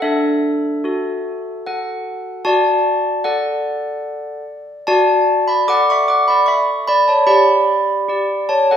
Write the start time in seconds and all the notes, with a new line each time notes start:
0.02 D4 A4 E5
0.84 F#4 A4
1.66 A4 F#5
2.45 F#4 D5 A5
3.24 A4 D5 F#5
4.87 F#4 D5 A5
5.48 D5 B5
5.68 A4 D5 F#5 D6
5.90 E5 C#6
6.08 F#5 D6
6.28 D5 B5
6.46 E5 C#6
6.87 D5 B5
7.08 C#5 A5
7.27 G4 D5 B5
8.08 G4 D5
8.49 C#5 A5
8.71 A4 F#5